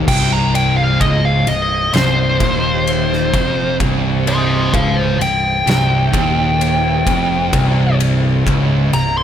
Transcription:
0.07 C1 C2 G5, kick, crash
0.33 A#5
0.55 G5, ride
0.77 F5
1.00 C#1 C#2 D#5, kick, ride
1.25 F5
1.47 C1 C2 D#5, ride
1.93 C1 C2 C5, snare, ride
2.40 D#1 D#2, kick, ride
2.87 ride
3.13 snare
3.33 F1 F2, kick, ride
3.80 C1 C2, kick, ride
4.27 C5 D#5, ride
4.73 C#1 C#2 C5 F5, kick, ride
5.19 C1 C2 G5, ride
5.66 C1 C2, snare, ride
6.13 D#1 D#2, kick, ride
6.61 ride
7.06 F1 F2, kick, ride
7.52 C1 C2, kick, ride
8.00 ride
8.45 C#1 C#2, kick, ride
8.92 C1 C2 A#5, ride
9.18 C6

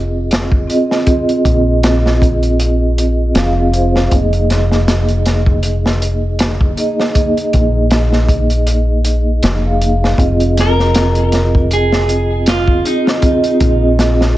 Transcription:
Already playing: F1 C4 F4 G#4 D#5
0.31 snare, closed hi-hat
0.52 kick
0.67 C4 F4 G#4 D#5, closed hi-hat
0.91 snare
1.04 C4 F4, kick, closed hi-hat
1.08 G#4 D#5
1.29 closed hi-hat
1.45 A#1, kick, closed hi-hat
1.83 snare, closed hi-hat
2.06 snare
2.22 kick, closed hi-hat
2.43 closed hi-hat
2.60 closed hi-hat
2.98 closed hi-hat
3.34 F1 C4 F4 G#4, snare, closed hi-hat
3.72 C4 F4 G#4 C5, closed hi-hat
3.96 snare
4.10 F1 A#3 D#4 G#4, kick, closed hi-hat
4.16 D#5
4.33 closed hi-hat
4.50 snare, closed hi-hat
4.71 snare
4.88 snare, closed hi-hat
5.08 closed hi-hat
5.26 snare, closed hi-hat
5.46 kick
5.63 closed hi-hat
5.86 snare
6.02 closed hi-hat
6.39 snare, closed hi-hat
6.61 kick
6.77 A#3 D#4 G#4 D#5, closed hi-hat
7.00 snare
7.13 A#3 D#4 G#4, kick, closed hi-hat
7.19 D#5
7.37 closed hi-hat
7.53 A#1, kick, closed hi-hat
7.91 snare, closed hi-hat
8.13 snare
8.29 kick, closed hi-hat
8.50 closed hi-hat
8.67 closed hi-hat
9.05 closed hi-hat
9.43 F1, snare, closed hi-hat
9.63 A#3 D#4 G#4 F5
9.81 closed hi-hat
10.04 snare
10.16 F1 C4 F4, kick, closed hi-hat
10.20 G#4 D#5
10.40 closed hi-hat
10.57 A#4, snare, closed hi-hat
10.79 snare
10.94 snare, closed hi-hat
11.15 closed hi-hat
11.32 snare, closed hi-hat
11.55 kick
11.71 G#4, closed hi-hat
11.92 snare
12.09 closed hi-hat
12.46 F4, snare, closed hi-hat
12.68 kick
12.83 C4 D#4 F4 G#4 D#5, closed hi-hat
13.07 snare
13.20 C4 F4 G#4, kick, closed hi-hat
13.26 D#5
13.44 closed hi-hat
13.60 A#1, kick, closed hi-hat
13.99 snare, closed hi-hat
14.21 snare

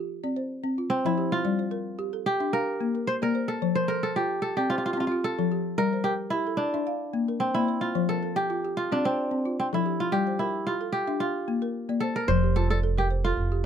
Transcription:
Already playing: G4
0.24 C4 D5
0.36 C5
0.63 C4
0.78 F4
0.90 C4
1.05 F3 E4
1.18 G4
1.32 F4
1.45 G3 D5
1.59 C5
1.71 A#4
1.99 G4
2.13 A4
2.26 G4
2.40 D4 E5
2.53 A#4 F5
2.80 A#3
2.95 A#4
3.07 C5
3.22 A#3 A#4 D5
3.35 C5
3.48 A4
3.62 F3 C5
3.75 A#4 C5
3.88 A4 A#4
4.03 A4
4.16 F4 G4
4.42 A4
4.57 C4 G4 D5
4.70 F4 C5
4.78 F4
4.86 F4
4.93 F4
4.97 C4 F4
5.07 F4
5.12 F4
5.24 A4
5.39 F3 A4
5.52 G4
5.78 G3 A#4 D5
5.93 C5
6.04 G4 A#4
6.30 E4 G4
6.47 A4
6.57 D4
6.74 D4 E5
6.87 F5
7.13 A#3
7.28 A#4
7.40 C4
7.54 A#3 E4 D5
7.68 C5
7.81 F4
7.95 F3 C5
8.09 A4 A#4
8.23 A4
8.36 G4
8.50 F4
8.65 G4
8.77 F4
8.92 C4 D4 D5
9.05 C4 C5
9.31 C4
9.45 F4
9.60 C4
9.73 F3 E4 A4
9.86 G4
10.00 F4
10.12 G3 G4 D5
10.27 C5
10.39 E4 A#4
10.67 F4 G4
10.81 A4
10.92 G4
11.07 D4 E5
11.20 F4 F5
11.48 A#3
11.62 A#4
11.89 A#3 D5
12.00 A4 C5
12.16 A#4
12.28 F1 F3 C5
12.43 G4
12.56 F4 A4
12.70 A4 D5
12.83 A4
12.98 G4 A#4
13.11 C5
13.24 F4 A4
13.37 F1
13.52 G4

